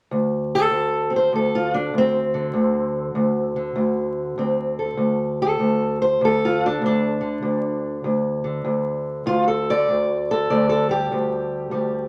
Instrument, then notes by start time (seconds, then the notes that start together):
steel-string acoustic guitar
0.11 D2
0.55 A4
0.71 D2
1.10 C4
1.16 C5
1.33 D2 A4
1.55 F4
1.74 D4
1.94 D2
1.98 C4
2.34 D3
2.53 D2
3.15 D2
3.56 D3
3.76 D2
4.38 D2 C4
4.79 A4
4.97 D2
5.42 A4
5.60 D2
6.02 C5
6.21 D2 A4
6.45 F4
6.66 D4
6.82 D2
6.86 D4
7.21 D3
7.42 D2
8.04 D2
8.44 D3
8.65 D2
9.26 D2 F4
9.48 A4
9.70 D5
9.88 D2
10.31 A4
10.50 D2 D5
10.69 A4
10.89 G3 G4
11.12 D2
11.71 D2 G3